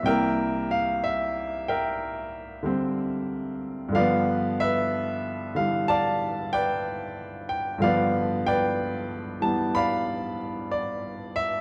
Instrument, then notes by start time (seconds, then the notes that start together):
grand piano
0.03 C2 C3 E3 G5
0.07 A#3 A#4 E5
0.71 F5
1.04 E5
1.68 A#4 E5 G5
2.63 D3 G3 C4
3.89 G2 D3
3.95 F3 B4 D5 F5
3.99 B3
4.60 B4 E5
5.55 D3 E3 G3 F5
5.88 D5 F5 A5
6.53 B4 D5 G5
7.49 G5
7.78 G2 D3 F3 F5
7.83 B3 B4 D5
8.47 B4 D5 G5
9.40 E3 G3 B3 A5
9.75 D5 F5 B5
10.71 D5
11.36 E5